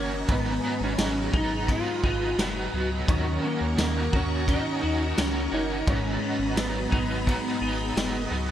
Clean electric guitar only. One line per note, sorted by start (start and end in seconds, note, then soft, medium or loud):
0.00 1.00 D#3 medium
0.00 0.36 A#3 medium
0.00 0.36 C#4 medium
0.00 1.32 F#4 medium
0.28 3.08 G#2 medium
0.63 1.67 B3 medium
0.98 2.73 F#3 medium
1.33 2.03 D#4 medium
1.68 2.37 B3 medium
2.04 3.47 D#4 medium
2.38 3.15 B3 medium
2.73 3.78 F#3 medium
3.08 6.58 D#3 medium
3.44 4.46 C#4 medium
3.79 5.51 A#3 medium
4.13 4.82 F#4 medium
4.48 5.16 C#4 medium
4.83 6.91 F#4 medium
5.17 5.94 C#4 medium
5.52 5.94 A#3 medium
5.87 8.51 G#2 medium
6.22 7.25 B3 medium
6.57 8.32 F#3 medium
6.91 7.61 D#4 medium
7.26 7.96 B3 medium
7.62 8.51 D#4 medium
7.97 8.51 B3 medium
8.32 8.51 F#3 medium